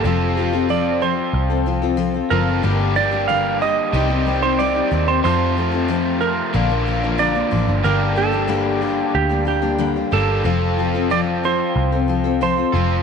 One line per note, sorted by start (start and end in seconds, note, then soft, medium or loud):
0.00 0.39 A4 medium
0.04 1.20 F1 medium
0.04 0.35 F3 medium
0.04 0.36 C4 medium
0.04 0.37 F4 medium
0.04 0.38 A4 medium
0.36 0.53 F3 medium
0.36 0.53 C4 medium
0.36 0.53 F4 medium
0.36 0.66 G4 medium
0.36 0.52 A4 medium
0.53 0.69 C4 soft
0.53 0.69 F4 soft
0.53 0.69 A4 medium
0.69 1.00 F3 medium
0.69 1.01 C4 medium
0.69 1.02 F4 medium
0.69 1.02 A4 medium
0.69 1.03 D5 medium
1.02 1.50 F3 medium
1.02 1.50 C4 medium
1.02 1.49 F4 medium
1.02 1.49 A4 medium
1.02 2.36 C5 medium
1.33 2.20 C2 medium
1.50 1.65 C4 soft
1.50 1.66 F4 soft
1.50 1.66 A4 medium
1.66 1.82 F3 medium
1.66 1.83 C4 medium
1.66 1.82 F4 medium
1.66 1.81 A4 medium
1.82 1.97 C4 soft
1.82 1.97 F4 medium
1.82 1.98 A4 soft
1.97 2.14 F3 medium
1.97 2.15 C4 medium
1.97 2.15 F4 medium
1.97 2.13 A4 medium
2.14 2.30 C4 soft
2.14 2.30 F4 soft
2.14 2.31 A4 soft
2.30 2.60 F#1 medium
2.30 2.47 F3 medium
2.30 2.48 C4 medium
2.30 2.47 F4 medium
2.30 2.46 A4 medium
2.30 2.98 A#4 medium
2.47 2.63 C4 soft
2.47 2.64 F4 soft
2.47 2.64 A4 soft
2.63 3.80 G1 loud
2.63 2.96 G2 medium
2.63 2.96 D3 medium
2.63 2.94 G3 medium
2.63 2.95 A#3 medium
2.63 2.96 D4 medium
2.63 2.96 G4 medium
2.95 3.12 G3 medium
2.95 3.12 A#3 medium
2.95 3.11 D4 medium
2.95 3.10 G4 medium
2.95 3.30 D5 medium
3.11 3.28 G3 soft
3.11 3.28 A#3 soft
3.11 3.29 D4 soft
3.11 3.28 G4 medium
3.28 3.61 G2 medium
3.28 3.61 D3 medium
3.28 3.60 G3 medium
3.28 3.61 A#3 medium
3.28 3.62 D4 medium
3.28 3.62 G4 medium
3.28 3.61 F5 medium
3.62 3.93 G3 medium
3.62 3.94 A#3 medium
3.62 3.94 G4 medium
3.62 4.45 D#5 loud
3.93 4.80 C2 medium
3.93 4.10 C3 medium
3.93 5.22 D#3 medium
3.93 4.10 G3 medium
3.93 4.10 C4 medium
3.93 4.09 D#4 medium
3.93 4.08 G4 medium
4.09 4.25 C4 soft
4.09 4.27 D#4 soft
4.09 4.26 G4 soft
4.26 4.43 G3 medium
4.26 4.43 C4 medium
4.26 4.43 D#4 medium
4.26 4.41 G4 medium
4.42 4.59 C4 soft
4.42 4.59 D#4 soft
4.42 4.59 G4 medium
4.42 4.59 C5 medium
4.59 4.75 C3 medium
4.59 4.75 G3 medium
4.59 4.76 C4 medium
4.59 4.74 D#4 medium
4.59 4.74 G4 medium
4.59 5.09 D5 medium
4.75 4.91 C4 soft
4.75 4.91 D#4 soft
4.75 4.91 G4 soft
4.91 5.20 D#2 medium
4.91 5.08 G3 medium
4.91 5.08 C4 medium
4.91 5.08 D#4 medium
4.91 5.06 G4 medium
5.07 5.24 C4 soft
5.07 5.25 D#4 soft
5.07 5.24 G4 soft
5.07 5.23 C5 medium
5.23 6.52 F2 medium
5.23 6.40 F2 loud
5.23 6.52 C3 medium
5.23 5.56 F3 medium
5.23 6.53 A3 medium
5.23 5.57 C4 medium
5.23 5.57 F4 medium
5.23 5.58 A4 medium
5.23 6.18 C5 medium
5.57 5.73 F3 medium
5.57 5.73 C4 medium
5.57 5.72 F4 medium
5.57 5.71 A4 medium
5.72 5.88 C4 soft
5.72 5.88 F4 soft
5.72 5.89 A4 medium
5.88 6.19 F3 medium
5.88 6.20 C4 medium
5.88 6.21 F4 medium
5.88 6.22 A4 medium
6.21 6.53 F3 medium
6.21 6.54 C4 medium
6.21 6.54 F4 medium
6.21 6.82 A#4 medium
6.53 7.41 A#1 medium
6.53 6.70 A#2 medium
6.53 6.70 D3 medium
6.53 6.70 F3 medium
6.53 6.70 A#3 medium
6.53 6.69 D4 medium
6.53 7.84 F4 medium
6.53 6.68 A#4 medium
6.69 6.85 F3 soft
6.69 6.86 A#3 soft
6.69 6.86 D4 soft
6.69 6.86 A#4 soft
6.86 7.03 F3 soft
6.86 7.03 A#3 soft
6.86 7.02 D4 medium
6.86 7.02 A#4 medium
7.03 7.18 F3 soft
7.03 7.18 A#3 soft
7.03 7.18 D4 soft
7.03 7.18 A#4 medium
7.18 7.35 A#2 medium
7.18 7.35 D3 medium
7.18 7.35 F3 medium
7.18 7.35 A#3 medium
7.18 7.34 D4 medium
7.18 7.34 A#4 medium
7.18 7.86 D5 medium
7.35 7.50 F3 soft
7.35 7.50 A#3 soft
7.35 7.50 D4 soft
7.35 7.51 A#4 soft
7.51 7.67 A1 medium
7.51 7.68 F3 medium
7.51 7.68 A#3 medium
7.51 7.67 D4 medium
7.51 7.66 A#4 medium
7.67 7.83 G1 medium
7.67 7.84 F3 soft
7.67 7.84 A#3 soft
7.67 7.84 D4 soft
7.67 7.84 A#4 soft
7.84 9.01 G1 loud
7.84 8.17 G2 medium
7.84 8.17 D3 medium
7.84 8.14 G3 medium
7.84 8.16 A#3 medium
7.84 8.16 D4 medium
7.84 8.17 G4 medium
7.84 8.17 A#4 medium
8.16 8.33 G3 medium
8.16 8.32 A#3 medium
8.16 8.32 D4 medium
8.16 8.31 G4 medium
8.16 8.84 A4 medium
8.32 8.47 G3 soft
8.32 8.48 A#3 soft
8.32 8.48 D4 soft
8.32 8.48 G4 medium
8.48 8.81 G2 medium
8.48 8.82 D3 medium
8.48 8.79 G3 medium
8.48 8.81 A#3 medium
8.48 8.81 D4 medium
8.48 8.82 G4 medium
8.81 9.30 G3 medium
8.81 9.30 A#3 medium
8.81 9.29 D4 medium
8.81 9.28 G4 medium
8.81 9.11 G4 medium
9.15 10.02 D2 medium
9.15 9.45 G4 medium
9.29 9.44 G3 soft
9.29 9.45 A#3 soft
9.29 9.45 D4 soft
9.29 9.47 G4 soft
9.45 9.62 G3 medium
9.45 9.61 A#3 medium
9.45 9.61 D4 medium
9.45 10.13 G4 medium
9.45 9.60 G4 medium
9.62 9.78 G3 soft
9.62 9.78 A#3 soft
9.62 9.78 D4 soft
9.62 9.78 G4 medium
9.78 9.96 G2 medium
9.78 9.96 D3 medium
9.78 9.96 G3 medium
9.78 9.96 A#3 medium
9.78 9.95 D4 medium
9.78 9.95 G4 medium
9.96 10.10 G3 soft
9.96 10.11 A#3 soft
9.96 10.11 D4 soft
9.96 10.12 G4 soft
10.11 10.42 G1 medium
10.11 10.44 D3 medium
10.11 10.43 G3 medium
10.11 10.45 A#3 medium
10.11 10.44 D4 medium
10.11 10.45 G4 medium
10.11 11.07 A4 medium
10.15 10.45 G2 medium
10.44 11.61 F1 medium
10.44 10.77 F3 medium
10.44 10.78 C4 medium
10.44 10.78 F4 medium
10.44 10.78 A4 medium
10.78 10.94 F3 medium
10.78 10.95 C4 medium
10.78 10.94 F4 medium
10.78 10.93 A4 medium
10.94 11.10 C4 soft
10.94 11.10 F4 soft
10.94 11.11 A4 medium
11.10 11.42 F3 medium
11.10 11.43 C4 medium
11.10 11.44 F4 medium
11.10 11.44 A4 medium
11.10 11.20 D5 medium
11.43 11.92 F3 medium
11.43 11.93 C4 medium
11.43 11.92 F4 medium
11.43 11.91 A4 medium
11.43 12.42 C5 medium
11.76 12.63 C2 medium
11.92 12.07 C4 soft
11.92 12.08 F4 soft
11.92 12.09 A4 soft
12.08 12.25 F3 soft
12.08 12.25 C4 soft
12.08 12.24 F4 medium
12.08 12.23 A4 medium
12.24 12.40 C4 soft
12.24 12.41 F4 soft
12.24 12.41 A4 medium
12.41 12.57 F3 medium
12.41 12.58 C4 medium
12.41 12.57 F4 medium
12.41 12.56 A4 medium
12.41 13.03 C5 medium
12.57 12.74 C4 soft
12.57 12.74 F4 soft
12.57 12.74 A4 soft
12.73 13.03 F1 medium
12.73 13.03 F3 medium
12.73 13.03 C4 medium
12.73 13.03 F4 medium
12.73 13.03 A4 medium